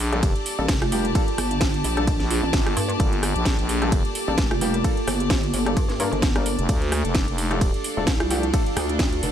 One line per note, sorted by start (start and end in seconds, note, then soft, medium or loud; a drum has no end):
0.00 0.34 A#1 medium
0.00 6.65 A#3 medium
0.00 0.30 D4 loud
0.00 6.65 G4 medium
0.00 8.53 G4 medium
0.00 0.89 A4 loud
0.00 9.32 A4 medium
0.00 9.32 D5 medium
0.00 7.42 A5 medium
0.12 0.22 G3 medium
0.12 0.22 A#3 medium
0.12 0.22 D4 medium
0.12 0.23 G4 medium
0.12 0.22 A4 medium
0.12 cross-stick medium
0.12 closed hi-hat soft
0.23 kick loud
0.23 closed hi-hat medium
0.23 ride medium
0.36 closed hi-hat soft
0.46 open hi-hat loud
0.59 0.67 A1 loud
0.59 0.64 G3 medium
0.59 0.64 A#3 medium
0.59 0.64 D4 medium
0.59 0.64 A4 medium
0.68 1.14 F1 loud
0.68 kick loud
0.68 snare loud
0.68 closed hi-hat medium
0.68 ride medium
0.82 0.88 F4 medium
0.82 cross-stick medium
0.82 closed hi-hat soft
0.92 1.04 G3 medium
0.92 1.04 A#3 medium
0.92 1.04 D4 medium
0.92 1.00 F4 medium
0.92 1.04 G4 loud
0.92 open hi-hat loud
1.05 closed hi-hat medium
1.15 1.22 G3 medium
1.15 1.22 A#3 medium
1.15 1.22 D4 medium
1.15 1.22 A4 loud
1.15 kick loud
1.15 closed hi-hat medium
1.15 ride medium
1.28 closed hi-hat soft
1.38 1.83 G1 loud
1.38 cross-stick medium
1.38 open hi-hat loud
1.51 1.58 D4 medium
1.51 closed hi-hat medium
1.61 1.69 D4 medium
1.61 kick loud
1.61 snare loud
1.61 closed hi-hat medium
1.61 ride medium
1.74 closed hi-hat soft
1.84 2.18 A#1 loud
1.84 open hi-hat loud
1.97 2.03 G3 medium
1.97 2.03 A#3 medium
1.97 2.03 D4 medium
1.97 2.04 D4 medium
1.97 2.03 A4 medium
1.97 cross-stick medium
1.97 closed hi-hat soft
2.07 2.16 D4 medium
2.07 kick loud
2.07 closed hi-hat medium
2.07 ride medium
2.20 2.41 A#1 medium
2.20 snare soft
2.20 closed hi-hat soft
2.30 2.77 F4 medium
2.30 open hi-hat loud
2.43 2.52 A1 loud
2.53 2.75 G1 medium
2.53 kick loud
2.53 snare loud
2.53 closed hi-hat medium
2.53 ride medium
2.66 cross-stick medium
2.66 closed hi-hat soft
2.77 2.98 G2 medium
2.77 open hi-hat loud
2.90 closed hi-hat medium
3.00 3.34 G1 medium
3.00 3.07 G3 medium
3.00 3.07 A#3 medium
3.00 3.07 D4 medium
3.00 3.07 A4 medium
3.00 kick loud
3.00 closed hi-hat medium
3.00 ride medium
3.13 closed hi-hat soft
3.23 cross-stick medium
3.23 open hi-hat loud
3.36 3.57 A#1 loud
3.36 closed hi-hat medium
3.45 kick loud
3.45 snare loud
3.45 closed hi-hat medium
3.45 ride medium
3.59 4.03 A#1 loud
3.59 closed hi-hat soft
3.69 open hi-hat loud
3.82 3.91 G3 medium
3.82 3.91 A#3 medium
3.82 3.91 D4 medium
3.82 3.92 G4 loud
3.82 3.91 A4 medium
3.82 cross-stick medium
3.82 closed hi-hat soft
3.92 kick loud
3.92 closed hi-hat medium
3.92 ride medium
4.05 closed hi-hat soft
4.15 open hi-hat loud
4.28 4.37 A1 medium
4.28 4.34 G3 medium
4.28 4.34 A#3 medium
4.28 4.34 D4 medium
4.28 4.34 A4 medium
4.38 4.83 F1 loud
4.38 kick loud
4.38 snare loud
4.38 closed hi-hat medium
4.38 ride medium
4.51 4.58 F4 medium
4.51 cross-stick medium
4.51 closed hi-hat soft
4.61 4.73 G3 loud
4.61 4.73 A#3 medium
4.61 4.73 D4 medium
4.61 4.70 F4 medium
4.61 4.73 G4 loud
4.61 open hi-hat loud
4.74 closed hi-hat medium
4.84 4.92 G3 loud
4.84 4.92 A#3 medium
4.84 4.92 D4 medium
4.84 4.92 A4 loud
4.84 kick loud
4.84 closed hi-hat medium
4.84 ride medium
4.97 closed hi-hat soft
5.07 5.52 G1 loud
5.07 cross-stick medium
5.07 open hi-hat loud
5.20 5.30 G4 loud
5.20 closed hi-hat medium
5.30 kick loud
5.30 snare loud
5.30 closed hi-hat medium
5.30 ride medium
5.43 closed hi-hat soft
5.54 5.75 G1 medium
5.54 open hi-hat loud
5.66 5.72 G3 medium
5.66 5.72 A#3 medium
5.66 5.72 D4 medium
5.66 5.72 A4 medium
5.66 cross-stick medium
5.66 closed hi-hat soft
5.77 6.11 G2 loud
5.77 kick loud
5.77 closed hi-hat medium
5.77 ride medium
5.89 snare soft
5.89 closed hi-hat soft
6.00 6.07 G3 medium
6.00 6.07 A#3 medium
6.00 6.08 D4 medium
6.00 6.07 D4 medium
6.00 6.07 A#4 loud
6.00 open hi-hat loud
6.13 6.57 G1 loud
6.13 6.19 D4 medium
6.13 closed hi-hat soft
6.22 kick loud
6.22 snare loud
6.22 closed hi-hat medium
6.22 ride medium
6.36 6.45 G3 medium
6.36 6.45 A#3 medium
6.36 6.45 D4 medium
6.36 6.69 D4 medium
6.36 6.45 A#4 medium
6.36 cross-stick medium
6.36 closed hi-hat soft
6.46 open hi-hat loud
6.59 6.67 F1 loud
6.59 closed hi-hat medium
6.69 7.03 D2 loud
6.69 6.76 F3 medium
6.69 6.76 A3 medium
6.69 9.32 D4 medium
6.69 6.76 D4 medium
6.69 9.32 D4 medium
6.69 6.76 A4 medium
6.69 9.32 F5 loud
6.69 kick loud
6.69 closed hi-hat medium
6.69 ride medium
6.82 closed hi-hat soft
6.86 9.32 A4 medium
6.92 cross-stick medium
6.92 open hi-hat loud
7.05 7.26 F1 loud
7.05 closed hi-hat medium
7.15 kick loud
7.15 snare loud
7.15 closed hi-hat medium
7.15 ride medium
7.28 7.72 F1 loud
7.28 closed hi-hat soft
7.38 open hi-hat loud
7.51 7.60 F3 medium
7.51 7.60 A3 medium
7.51 7.60 D4 medium
7.51 7.61 G4 loud
7.51 7.60 A4 medium
7.51 cross-stick medium
7.51 closed hi-hat soft
7.61 kick loud
7.61 closed hi-hat medium
7.61 ride medium
7.74 closed hi-hat soft
7.84 open hi-hat loud
7.97 8.06 D#1 medium
7.97 8.03 F3 medium
7.97 8.03 A3 medium
7.97 8.03 D4 medium
7.97 8.03 A4 medium
8.07 8.52 C2 loud
8.07 kick loud
8.07 snare loud
8.07 closed hi-hat medium
8.07 ride medium
8.20 8.27 F4 medium
8.20 cross-stick medium
8.20 closed hi-hat soft
8.30 8.42 F3 loud
8.30 8.42 A3 medium
8.30 8.42 D4 medium
8.30 8.39 F4 medium
8.30 8.42 G4 loud
8.30 open hi-hat loud
8.43 closed hi-hat medium
8.54 8.61 F3 loud
8.54 8.61 A3 medium
8.54 8.61 D4 medium
8.54 8.61 A4 loud
8.54 kick loud
8.54 closed hi-hat medium
8.54 ride medium
8.66 closed hi-hat soft
8.77 9.21 D2 loud
8.77 cross-stick medium
8.77 open hi-hat loud
8.89 8.96 D4 medium
8.89 closed hi-hat medium
8.99 9.08 D4 medium
8.99 kick loud
8.99 snare loud
8.99 closed hi-hat medium
8.99 ride medium
9.13 closed hi-hat soft
9.23 9.32 F1 medium
9.23 open hi-hat loud